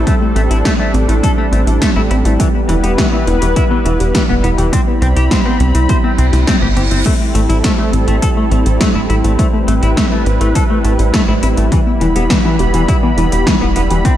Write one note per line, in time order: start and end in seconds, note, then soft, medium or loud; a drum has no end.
0.00 7.02 G3 medium
0.00 2.36 C4 medium
0.00 2.36 A4 medium
0.07 0.20 G3 medium
0.07 0.14 A3 medium
0.07 2.38 D4 medium
0.07 kick loud
0.07 closed hi-hat medium
0.21 0.27 A3 loud
0.36 0.49 A1 medium
0.36 0.40 A3 loud
0.36 0.50 C4 medium
0.36 closed hi-hat medium
0.50 0.63 A1 medium
0.50 0.64 E4 medium
0.50 0.58 E4 medium
0.50 closed hi-hat medium
0.65 0.79 G3 loud
0.65 0.72 A3 medium
0.65 kick loud
0.65 snare loud
0.65 closed hi-hat medium
0.80 0.93 A3 medium
0.80 0.91 A3 medium
0.94 1.07 A1 loud
0.94 1.00 C4 medium
0.94 closed hi-hat medium
1.08 1.21 A1 medium
1.08 1.13 A3 medium
1.08 1.18 E4 medium
1.08 closed hi-hat medium
1.23 1.29 G3 loud
1.23 1.31 A4 medium
1.23 kick loud
1.23 closed hi-hat medium
1.38 1.47 A3 medium
1.38 1.45 A3 medium
1.52 1.65 A1 medium
1.52 1.60 A3 medium
1.52 1.58 C4 medium
1.52 closed hi-hat medium
1.67 1.80 A1 medium
1.67 1.76 E4 medium
1.67 closed hi-hat medium
1.82 1.95 G3 medium
1.82 1.89 A3 loud
1.82 kick loud
1.82 snare loud
1.82 closed hi-hat medium
1.96 2.09 A1 medium
1.96 2.02 A3 loud
1.96 2.01 E4 medium
2.11 2.23 A1 medium
2.11 2.25 C4 medium
2.11 2.15 E4 medium
2.11 closed hi-hat medium
2.25 2.38 A1 medium
2.25 2.32 A3 medium
2.25 2.39 E4 medium
2.25 closed hi-hat medium
2.40 2.47 E3 medium
2.40 2.54 G3 loud
2.40 4.71 B3 medium
2.40 14.17 E4 medium
2.40 4.70 B4 medium
2.40 kick loud
2.40 closed hi-hat medium
2.55 2.68 B3 medium
2.69 2.82 E1 medium
2.69 2.73 E3 loud
2.69 2.75 E4 medium
2.69 closed hi-hat medium
2.83 2.96 E1 medium
2.83 2.91 B3 medium
2.83 2.93 G4 medium
2.83 closed hi-hat medium
2.98 3.05 E3 loud
2.98 3.04 G3 loud
2.98 kick loud
2.98 snare loud
2.98 closed hi-hat medium
3.12 3.23 E3 medium
3.12 3.22 B3 medium
3.27 3.40 E1 loud
3.27 3.33 E4 medium
3.27 closed hi-hat medium
3.42 3.55 E1 medium
3.42 3.46 E3 medium
3.42 3.51 G4 medium
3.42 closed hi-hat medium
3.56 3.70 G3 medium
3.56 3.64 E4 medium
3.56 kick loud
3.56 closed hi-hat medium
3.71 3.78 E3 medium
3.71 3.76 B3 loud
3.85 3.98 E1 medium
3.85 3.93 E3 medium
3.85 3.99 E4 medium
3.85 closed hi-hat medium
4.00 4.13 E1 medium
4.00 4.14 G4 medium
4.00 closed hi-hat medium
4.14 4.22 E3 loud
4.14 4.28 G3 loud
4.14 kick loud
4.14 snare loud
4.14 closed hi-hat medium
4.29 4.42 E1 medium
4.29 4.43 B3 medium
4.29 4.34 B3 medium
4.44 4.56 E1 medium
4.44 4.48 B3 medium
4.44 4.49 E4 medium
4.44 closed hi-hat medium
4.58 4.71 E1 medium
4.58 4.66 E3 medium
4.58 4.67 G4 medium
4.58 closed hi-hat medium
4.73 4.78 G3 loud
4.73 11.68 C4 medium
4.73 4.80 C4 medium
4.73 7.03 B5 medium
4.73 kick loud
4.73 closed hi-hat medium
4.87 4.97 B3 medium
5.02 5.15 C2 medium
5.02 5.06 C4 loud
5.02 5.07 C4 medium
5.02 closed hi-hat medium
5.16 5.29 C2 medium
5.16 5.26 E4 medium
5.16 5.24 G4 medium
5.16 closed hi-hat medium
5.31 5.45 G3 medium
5.31 5.38 C4 loud
5.31 kick loud
5.31 snare loud
5.31 closed hi-hat medium
5.46 5.51 B3 medium
5.46 5.57 C4 medium
5.60 5.73 C2 loud
5.60 5.74 C4 medium
5.60 closed hi-hat medium
5.75 5.88 C2 medium
5.75 5.79 C4 medium
5.75 5.88 E4 medium
5.75 closed hi-hat medium
5.89 6.03 G3 loud
5.89 5.97 C5 medium
5.89 kick loud
5.89 closed hi-hat medium
5.89 reverse cymbal medium
6.04 6.17 B3 medium
6.04 6.11 C4 medium
6.18 6.31 C2 medium
6.18 6.24 C4 medium
6.18 6.26 C4 medium
6.18 closed hi-hat medium
6.33 6.46 C2 medium
6.33 6.42 E4 medium
6.33 snare soft
6.33 closed hi-hat medium
6.47 6.53 G3 loud
6.47 6.55 C4 loud
6.47 kick loud
6.47 snare loud
6.47 closed hi-hat loud
6.62 6.75 G1 medium
6.62 6.71 B3 medium
6.62 6.67 G4 medium
6.76 6.89 G1 medium
6.76 6.82 C4 medium
6.76 6.81 G4 medium
6.76 closed hi-hat medium
6.91 7.04 G1 medium
6.91 6.99 C4 medium
6.91 7.00 E4 medium
6.91 closed hi-hat medium
7.06 7.11 G3 loud
7.06 14.17 G3 medium
7.06 7.13 A3 medium
7.06 9.37 A4 medium
7.06 kick loud
7.06 closed hi-hat medium
7.06 crash medium
7.20 7.29 A3 medium
7.35 7.48 A1 medium
7.35 7.39 A3 loud
7.35 7.40 E4 medium
7.35 closed hi-hat medium
7.49 7.62 A1 medium
7.49 7.59 E4 medium
7.49 7.57 E4 medium
7.49 closed hi-hat medium
7.64 7.78 G3 medium
7.64 7.71 A3 loud
7.64 kick loud
7.64 snare loud
7.64 closed hi-hat medium
7.78 7.84 A3 loud
7.78 7.90 A3 medium
7.93 8.06 A1 loud
7.93 8.07 C4 medium
7.93 closed hi-hat medium
8.08 8.20 A1 medium
8.08 8.15 A3 loud
8.08 8.21 E4 medium
8.08 closed hi-hat medium
8.22 8.36 G3 loud
8.22 8.30 A4 medium
8.22 kick loud
8.22 closed hi-hat medium
8.37 8.44 A3 medium
8.37 8.51 A3 medium
8.51 8.64 A1 medium
8.51 8.59 A3 medium
8.51 8.57 C4 medium
8.51 closed hi-hat medium
8.66 8.79 A1 medium
8.66 8.75 E4 medium
8.66 closed hi-hat medium
8.81 8.86 G3 medium
8.81 8.88 A3 loud
8.81 kick loud
8.81 snare loud
8.81 closed hi-hat medium
8.95 9.08 A1 medium
8.95 9.04 A3 medium
8.95 9.00 E4 medium
9.10 9.22 A1 medium
9.10 9.14 E4 medium
9.10 9.15 E4 medium
9.10 closed hi-hat medium
9.24 9.37 A1 medium
9.24 9.32 A3 medium
9.24 9.34 E4 medium
9.24 closed hi-hat medium
9.39 9.53 G3 medium
9.39 9.46 A3 medium
9.39 11.70 B4 medium
9.39 kick loud
9.39 closed hi-hat medium
9.54 9.59 A3 loud
9.68 9.81 A1 medium
9.68 9.72 A3 loud
9.68 9.82 C4 medium
9.68 closed hi-hat medium
9.82 9.95 A1 medium
9.82 9.96 E4 medium
9.82 9.90 E4 medium
9.82 closed hi-hat medium
9.97 10.11 G3 loud
9.97 10.04 A3 loud
9.97 kick loud
9.97 snare loud
9.97 closed hi-hat medium
10.12 10.23 A3 medium
10.12 10.25 A3 medium
10.26 10.39 A1 loud
10.26 10.32 C4 medium
10.26 closed hi-hat medium
10.41 10.54 A1 medium
10.41 10.48 A3 loud
10.41 10.50 E4 medium
10.41 closed hi-hat medium
10.55 10.61 G3 loud
10.55 10.63 A4 medium
10.55 kick loud
10.55 closed hi-hat medium
10.70 10.77 A3 medium
10.70 10.79 A3 medium
10.85 10.97 A1 medium
10.85 10.92 A3 medium
10.85 10.90 E4 medium
10.85 closed hi-hat medium
10.99 11.12 A1 medium
10.99 11.08 E4 medium
10.99 closed hi-hat medium
11.14 11.27 G3 medium
11.14 11.21 A3 loud
11.14 kick loud
11.14 snare loud
11.14 closed hi-hat loud
11.28 11.41 A1 medium
11.28 11.34 A3 loud
11.28 11.33 E4 medium
11.43 11.56 A1 medium
11.43 11.57 C4 medium
11.43 11.47 E4 medium
11.43 closed hi-hat medium
11.57 11.70 A1 medium
11.57 11.65 A3 medium
11.57 11.71 E4 medium
11.57 closed hi-hat medium
11.72 11.79 E3 medium
11.72 11.86 G3 medium
11.72 14.03 B3 medium
11.72 14.17 B5 medium
11.72 kick loud
11.72 closed hi-hat medium
11.87 12.00 B3 medium
12.01 12.14 E1 medium
12.01 12.06 E3 loud
12.01 12.07 E4 medium
12.01 closed hi-hat medium
12.15 12.28 E1 medium
12.15 12.23 B3 medium
12.15 12.25 G4 medium
12.15 closed hi-hat medium
12.30 12.38 E3 loud
12.30 12.36 G3 loud
12.30 kick loud
12.30 snare loud
12.30 closed hi-hat medium
12.45 12.56 E3 medium
12.45 12.54 B3 medium
12.59 12.72 E1 loud
12.59 12.65 G4 medium
12.59 closed hi-hat medium
12.74 12.86 E1 medium
12.74 12.81 E3 loud
12.74 12.83 G4 medium
12.74 closed hi-hat medium
12.88 13.02 G3 medium
12.88 12.96 E4 medium
12.88 kick loud
12.88 closed hi-hat medium
13.03 13.10 E3 medium
13.03 13.09 B3 loud
13.17 13.30 E1 loud
13.17 13.25 E3 medium
13.17 13.31 E4 medium
13.17 closed hi-hat medium
13.32 13.45 E1 medium
13.32 13.46 G4 medium
13.32 closed hi-hat medium
13.47 13.54 E3 loud
13.47 13.60 G3 loud
13.47 kick loud
13.47 snare loud
13.47 closed hi-hat medium
13.61 13.74 E1 medium
13.61 13.75 B3 medium
13.61 13.66 B3 medium
13.76 13.89 E1 medium
13.76 13.80 B3 medium
13.76 13.81 E4 medium
13.76 closed hi-hat medium
13.90 14.03 E1 medium
13.90 13.98 E3 medium
13.90 14.00 G4 medium
13.90 closed hi-hat medium
14.05 14.10 G3 medium
14.05 14.17 C4 medium
14.05 14.12 C4 medium
14.05 kick loud
14.05 closed hi-hat medium